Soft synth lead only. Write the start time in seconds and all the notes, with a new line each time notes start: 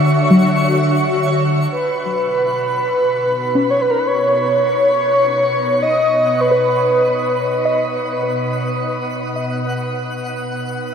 1.72 B4
3.70 C#5
3.81 B4
3.90 A#4
3.99 B4
4.07 C#5
5.82 D#5
6.41 B4